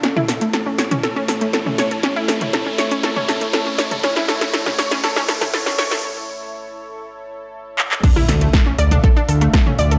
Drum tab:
CC |----------------|----------------|----------------|----------------|
HH |x-oxx-oxx-oxx-ox|x-oxx-oxx-oxx-ox|x-oxx-oxx-oxx-ox|----------------|
CP |----------------|----------------|----------------|--------------xx|
SD |o-o-o-o-o-o-o-o-|o-o-o-o-o-o-o-o-|oooooooooooooooo|----------------|
T2 |-o-----o-----o--|---o-----o-----o|-----o-----o----|----------------|
BD |----------------|----------------|----------------|----------------|

CC |x---------------|
HH |x-oxx-oxx-oxx-ox|
CP |----------------|
SD |-ro-o-r----ro---|
T2 |-o-----o-----o--|
BD |o---o---o---o---|